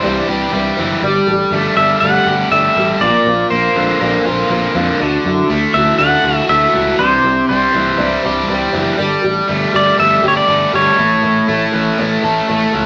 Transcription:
Already playing: C3 E3 C5
0.02 C2 C3 E3 G3 D4 E4 C5
0.27 C2 G3 D4 E4 G4 B4 C5
0.52 C2 G3 D4 E4 C5
0.77 F#1 E3 G3 D4 E4 C5
1.02 G1 G3 D4 G4 A4
1.27 A1 D4 G4 A4
1.51 G1 G3 A3 D4 G4 A4
1.77 G1 G3 D4 G4 A4 E5
2.00 G1 G3 A3 D4 G4 F#5
2.04 A4
2.25 G1 G4 A4
2.30 D4
2.51 G1 G3 A3 D4 G4 A4 E5
2.76 A1 G3 D4 G4 A4
3.00 A#1 A#2 D3 A#3 C4 F4 C5 D5
3.26 A#1 A#3 C4 F4 C5
3.50 A#1 A#3 C4 F4 C5
3.76 A#1 D3 A#3 C4 F4 C5
4.00 A#1 A#2 D3 A#3 C4 F4 C5
4.25 A#1 A#3 C4 F4 C5
4.49 A#1 A#3 C4 F4 C5
4.74 F2 D3 A#3 C4 F4 C5
4.99 D2 D3 A3 E4 F#4 A4
5.24 F#2 E4 F#4 A4
5.48 D2 A3 E4
5.52 F#4 A4
5.74 D2 E3 E4 F#4 A4 E5
5.98 D2 D3 A3 E4 F#4 A4 F#5
6.24 D2 E4 F#4 A4
6.49 D2 A3 E4 F#4 A4 E5
6.74 C#2 E3 E4 F#4 A4
6.98 C2 C3 E3 G3 D4 E4 C5
7.23 C2 G3 D4 E4 C5
7.49 C2 G3 D4 E4 C5
7.72 C2 E3 G3 D4 E4 C5
7.97 C2 C3 E3 G3 D4 E4 C5
8.23 C2 G3 D4 E4 G4 C5
8.48 C2 G3 D4 E4 C5
8.72 F#1 E3 G3 D4 E4 C5
8.97 G1 G3 D4 G4 A4
9.22 A1 D4 G4 A4
9.47 G1 G3 A3 D4 G4 A4
9.72 G1 G3 D4 G4 A4 D5
9.97 G1 G3 A3 D4 G4 A4 E5
10.22 G1 D4 G4 A4
10.28 C#5
10.37 D5
10.46 G1 G3 A3 D4 G4 A4
10.72 G1 G3 D4 G4 A4 C#5
10.97 A1 A2 E3 A3 C#4 E4 A4
11.21 A1 A3 C#4 E4 A4
11.47 A1 A3 C#4 E4 A4
11.72 A1 E3 A3 C#4 E4 A4
11.98 A1 A2 E3 A3 C#4 E4 A4
12.23 A1 A3 C#4 E4 A4
12.48 A1 A3 C#4 E4 A4
12.72 C#2 E3 A3 C#4 E4 A4

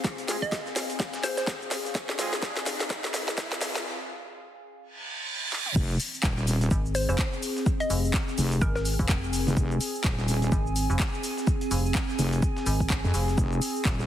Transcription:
Already playing: C4 G#4 F5 G#5, riser
0.04 kick, snare, shaker
0.18 closed hi-hat, shaker
0.28 G#3 C4 F4 G#4, snare, open hi-hat, shaker
0.42 D#5, kick, shaker
0.52 kick, snare, shaker
0.66 snare, shaker
0.76 snare, open hi-hat, shaker
0.90 closed hi-hat, shaker
1.00 kick, snare, shaker
1.14 snare, shaker
1.23 C5, snare, open hi-hat, shaker
1.37 C5, snare, shaker
1.47 kick, snare, shaker
1.62 shaker
1.71 snare, open hi-hat, shaker
1.85 snare, shaker
1.95 kick, snare, shaker
2.09 snare, shaker
2.19 G#3 C4 F4 G#4, snare, open hi-hat, shaker
2.33 snare, shaker
2.42 kick, snare, shaker
2.56 snare, shaker
2.66 snare, open hi-hat, shaker
2.80 snare, closed hi-hat, shaker
2.90 kick, snare, shaker
3.04 snare, shaker
3.14 snare, open hi-hat, shaker
3.28 snare, shaker
3.38 kick, snare, shaker
3.52 snare, shaker
3.61 snare, open hi-hat, shaker
3.75 snare, shaker
4.81 reverse cymbal
5.52 snare
5.66 mid tom
5.76 F1 C4, kick, crash, shaker
5.90 shaker
6.00 open hi-hat, shaker
6.14 G#4, shaker
6.23 D#1, kick, snare, clap, shaker
6.37 snare, shaker
6.47 open hi-hat, shaker
6.61 closed hi-hat, shaker
6.71 G#1, kick, shaker
6.86 shaker
6.95 C5, open hi-hat, shaker
7.09 F1 C5, shaker
7.19 kick, snare, clap, shaker
7.33 shaker
7.42 open hi-hat, shaker
7.48 G#5
7.57 snare, shaker
7.66 kick, shaker
7.80 D#5, closed hi-hat, shaker
7.90 F1, open hi-hat, shaker
8.05 shaker
8.14 kick, snare, clap, shaker
8.28 snare, shaker
8.38 F1, snare, open hi-hat, shaker
8.52 closed hi-hat, shaker
8.61 G#1 A#4, kick, shaker
8.76 A#4, snare, shaker
8.85 open hi-hat, shaker
8.99 F1, kick, shaker
9.09 kick, snare, clap, shaker
9.24 shaker
9.33 open hi-hat, shaker
9.47 F1, snare, shaker
9.57 F1, kick, shaker
9.71 shaker
9.81 open hi-hat, shaker
9.95 shaker
10.04 D#1, kick, snare, clap, shaker
10.18 snare, shaker
10.28 open hi-hat, shaker
10.42 closed hi-hat, shaker
10.52 G#1, kick, shaker
10.67 shaker
10.76 open hi-hat, shaker
10.90 F1, shaker
11.00 kick, snare, clap, shaker
11.14 shaker
11.23 open hi-hat, shaker
11.37 snare, shaker
11.47 kick, shaker
11.61 closed hi-hat, shaker
11.71 F1, open hi-hat, shaker
11.86 shaker
11.95 kick, snare, clap, shaker
12.09 snare, shaker
12.19 F1, snare, open hi-hat, shaker
12.33 closed hi-hat, shaker
12.42 kick, shaker
12.57 snare, shaker
12.66 G#1, open hi-hat, shaker
12.80 kick, shaker
12.90 kick, snare, clap, shaker
13.04 F2, shaker
13.14 F1, open hi-hat, shaker
13.28 snare, shaker
13.38 F1, kick, shaker
13.52 shaker
13.62 open hi-hat, shaker
13.76 shaker
13.85 D#1, kick, snare, clap, shaker
13.99 snare, shaker

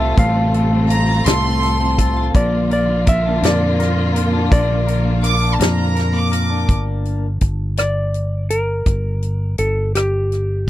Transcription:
Already playing: C2 A2 C3 G3 A3 C4 F4 A4 E5
0.00 F4
0.17 A1 A2 A4 F5, kick, closed hi-hat
0.36 C4
0.54 A4, closed hi-hat
0.73 C4
0.89 A#5, closed hi-hat
1.09 F4
1.25 C2 A2 A4 C6, snare, closed hi-hat
1.44 C4
1.62 A4, snare, closed hi-hat
1.81 C4
1.98 A4, kick, closed hi-hat
2.16 F4
2.34 A#1 A#2 D3 F3 A#3 F4 A#4 D5, kick, closed hi-hat
2.53 A#3
2.71 A#4 D5, closed hi-hat
2.89 A#3
3.07 A#4 E5, kick, closed hi-hat
3.26 D4
3.42 F2 A#2 A#4 D5, snare, closed hi-hat
3.61 A#3
3.80 A#4, snare, closed hi-hat
3.97 A#3
4.15 A#4, closed hi-hat
4.33 D4
4.51 A#1 A#2 A#4 D5, kick, closed hi-hat
4.69 A#3
4.87 A#4, closed hi-hat
5.05 A#3
5.23 A#4 D6, closed hi-hat
5.41 D4
5.53 A5
5.59 F2 A#2 A#4 A#5, snare, closed hi-hat
5.77 A#3
5.95 A#4, snare, closed hi-hat
6.13 A#3 D6
6.32 A#4, closed hi-hat
6.50 D4
6.69 G1, kick, closed hi-hat
7.05 closed hi-hat
7.41 G1, kick, closed hi-hat
7.77 D5, cross-stick, closed hi-hat
8.14 closed hi-hat
8.50 A#4, closed hi-hat
8.86 G1, kick, closed hi-hat
9.22 closed hi-hat
9.58 G1 A4, closed hi-hat
9.95 G4, cross-stick, closed hi-hat
10.32 cross-stick, closed hi-hat

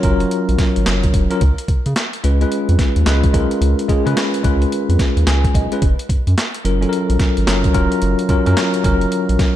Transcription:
Already playing: F#3 C#4 F4 A#4 C#5
0.03 F#1 F#3 C#4 F4 A#4, kick, closed hi-hat
0.20 closed hi-hat
0.31 closed hi-hat
0.49 A#1, closed hi-hat
0.58 kick, snare, closed hi-hat
0.76 G#1, closed hi-hat
0.86 F#1, snare, clap, closed hi-hat
1.03 kick, closed hi-hat
1.14 F1, kick, closed hi-hat
1.30 F#3 C#4 F4 A#4, closed hi-hat
1.41 C#2, kick, closed hi-hat
1.58 closed hi-hat
1.68 C#3, kick, closed hi-hat
1.86 C#3, closed hi-hat
1.96 snare, clap, closed hi-hat
2.13 closed hi-hat
2.24 C#2 G#3 C#4 F4 B4, closed hi-hat
2.41 G#3 C#4 F4 B4, closed hi-hat
2.52 closed hi-hat
2.69 F2, closed hi-hat
2.79 kick, snare, closed hi-hat
2.96 D#2, closed hi-hat
3.06 C#2 G#3 C#4 F4 B4, snare, clap, closed hi-hat
3.24 kick, closed hi-hat
3.33 B1 G#3 C#4 F4 A#4, kick, closed hi-hat
3.51 closed hi-hat
3.61 C#2, closed hi-hat
3.79 closed hi-hat
3.88 C#3 G#3 C#4 F4 G#4, kick, closed hi-hat
4.05 C#3 G#3 C#4 F4 B4, closed hi-hat
4.17 snare, clap, closed hi-hat
4.34 closed hi-hat
4.43 C#2 G#3 C#4 F4 B4, kick, closed hi-hat
4.62 closed hi-hat
4.72 closed hi-hat
4.89 F2, closed hi-hat
4.99 kick, snare, closed hi-hat
5.17 D#2, closed hi-hat
5.27 C#2 G#5, snare, clap, closed hi-hat
5.44 kick, closed hi-hat
5.55 B1 D#5, kick, closed hi-hat
5.72 G#3 C#4 F4 B4, closed hi-hat
5.82 F#1, kick, closed hi-hat
5.99 closed hi-hat
6.09 F#2, kick, closed hi-hat
6.27 F#2, closed hi-hat
6.38 snare, clap, closed hi-hat
6.54 closed hi-hat
6.64 F#1 F#3 C#4 F4 A#4, closed hi-hat
6.81 F#3 C#4 F4 A4, closed hi-hat
6.89 A#4, closed hi-hat
7.10 A#1, closed hi-hat
7.19 kick, snare, closed hi-hat
7.37 G#1, closed hi-hat
7.47 F#1 F#3 C#4 F4 A#4, snare, clap, closed hi-hat
7.64 kick, closed hi-hat
7.73 F1 F#3 C#4 F4 A#4, kick, closed hi-hat
7.92 closed hi-hat
8.02 F#1, closed hi-hat
8.19 closed hi-hat
8.29 F#2 F#3 C#4 F4 A#4, kick, closed hi-hat
8.46 F#2 F#3 C#4 F4 A#4, closed hi-hat
8.57 snare, clap, closed hi-hat
8.74 closed hi-hat
8.84 F#1 F#3 C#4 F4 A#4, kick, closed hi-hat
9.01 closed hi-hat
9.12 closed hi-hat
9.29 A#1, closed hi-hat
9.39 kick, snare, closed hi-hat

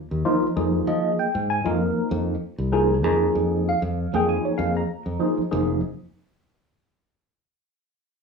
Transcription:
0.11 D#2
0.25 F3 A#3 D#4 F4
0.43 muted fingered electric bass stroke
0.56 F2 F3 A#3 D#4 G#4
0.87 F3 D#5
1.19 G5
1.35 G#2
1.50 G#5
1.65 F2 F3 A#3 D#4 A#4
2.11 F2
2.58 C2
2.72 F3 A#3 D#4 G#4
3.03 F2 F3 A#3 D#4 G#4
3.35 F2
3.69 F5
3.82 F2
4.13 F2 F3 A#3 D#4 G#4 G5
4.29 G#5
4.45 C#5
4.58 F2 F5
4.77 A#5
5.06 F2
5.19 F3 A#3 D#4 G#4
5.38 muted fingered electric bass stroke
5.51 F1 F3 A#3 D#4 G#4

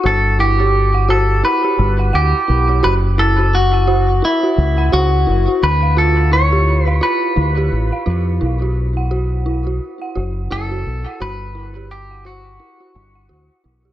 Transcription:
0.04 G1 F#4 A4
0.39 E4 G4
0.60 G4
0.94 F#5
1.09 F#4 A4
1.43 E4 B4
1.64 G4
1.79 G1
1.99 F#5
2.13 D2 G4 F#5
2.48 B1 E4
2.69 G4
2.83 F#1 F#4 B4
3.18 E4 A4
3.39 F#4
3.55 F#4
3.74 F#5
3.87 F#4
4.22 E4
4.43 F#4
4.58 C#2
4.78 F#5
4.92 C#2 F#4
5.27 F#1 E4
5.48 F#4
5.63 D2 B4
5.83 F5
5.97 F4 A4
6.31 E4 C#5
6.52 G4
6.86 B4 F5
7.01 F4 B4
7.36 D2 E4
7.57 G4
7.72 A1
7.93 F5
8.06 F2 F4
8.41 B1 E4
8.62 F#4
8.97 F#5
9.11 F#4
9.46 E4
9.67 F#4
10.02 F#5
10.15 F#1 F#4
10.51 F#1 E4 A4
10.71 F#4
10.86 B1
11.06 F#5
11.20 G1 F#4 B4
11.55 E4
11.76 G4
11.91 G4
12.11 F#5
12.25 F#4
12.60 E4
12.80 F#4
12.95 G1
13.15 F#5
13.29 D2 F#4
13.64 B1 E4
13.85 G4

